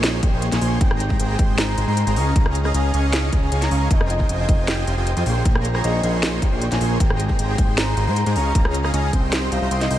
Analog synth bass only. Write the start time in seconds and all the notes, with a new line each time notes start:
Already playing: A#1
0.23 A#1
0.33 A#1
0.52 A#1
0.62 A#1
0.81 G#1
1.20 G#1
1.39 G#1
1.78 G#1
1.88 G#2
2.07 G#1
2.16 C#2
2.36 C#2
2.74 C#2
2.94 C#2
3.32 C#2
3.42 C#2
3.52 C#2
3.71 C#2
3.91 F1
4.29 F1
4.49 F1
4.87 F1
4.97 F1
5.17 F2
5.26 A#1
5.45 A#1
5.84 A#1
6.03 A#1
6.42 A#1
6.52 A#1
6.72 A#1
6.81 A#1
7.00 G#1
7.39 G#1
7.58 G#1
7.97 G#1
8.07 G#2
8.26 G#2
8.36 C#2
8.55 C#2
8.94 C#2
9.13 C2
9.52 C2
9.62 C2
9.71 C2
9.91 C2